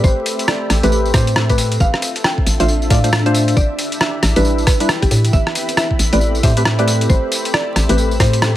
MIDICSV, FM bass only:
0, 0, Header, 1, 2, 480
1, 0, Start_track
1, 0, Key_signature, 0, "minor"
1, 0, Tempo, 441176
1, 41, Time_signature, 4, 2, 24, 8
1, 9323, End_track
2, 0, Start_track
2, 0, Title_t, "FM bass"
2, 0, Program_c, 0, 39
2, 42, Note_on_c, 0, 33, 97
2, 164, Note_off_c, 0, 33, 0
2, 761, Note_on_c, 0, 33, 87
2, 884, Note_off_c, 0, 33, 0
2, 907, Note_on_c, 0, 33, 102
2, 1217, Note_off_c, 0, 33, 0
2, 1241, Note_on_c, 0, 45, 97
2, 1937, Note_off_c, 0, 45, 0
2, 1962, Note_on_c, 0, 33, 94
2, 2084, Note_off_c, 0, 33, 0
2, 2681, Note_on_c, 0, 33, 86
2, 2804, Note_off_c, 0, 33, 0
2, 2828, Note_on_c, 0, 33, 99
2, 3137, Note_off_c, 0, 33, 0
2, 3160, Note_on_c, 0, 45, 94
2, 3856, Note_off_c, 0, 45, 0
2, 3881, Note_on_c, 0, 33, 99
2, 4004, Note_off_c, 0, 33, 0
2, 4602, Note_on_c, 0, 33, 88
2, 4724, Note_off_c, 0, 33, 0
2, 4749, Note_on_c, 0, 33, 100
2, 5057, Note_off_c, 0, 33, 0
2, 5467, Note_on_c, 0, 33, 92
2, 5546, Note_off_c, 0, 33, 0
2, 5561, Note_on_c, 0, 45, 97
2, 5771, Note_off_c, 0, 45, 0
2, 5801, Note_on_c, 0, 33, 99
2, 5924, Note_off_c, 0, 33, 0
2, 6520, Note_on_c, 0, 33, 84
2, 6643, Note_off_c, 0, 33, 0
2, 6667, Note_on_c, 0, 33, 107
2, 6977, Note_off_c, 0, 33, 0
2, 7000, Note_on_c, 0, 45, 96
2, 7696, Note_off_c, 0, 45, 0
2, 7720, Note_on_c, 0, 33, 97
2, 7844, Note_off_c, 0, 33, 0
2, 8441, Note_on_c, 0, 33, 82
2, 8564, Note_off_c, 0, 33, 0
2, 8586, Note_on_c, 0, 33, 108
2, 8896, Note_off_c, 0, 33, 0
2, 8921, Note_on_c, 0, 45, 96
2, 9323, Note_off_c, 0, 45, 0
2, 9323, End_track
0, 0, End_of_file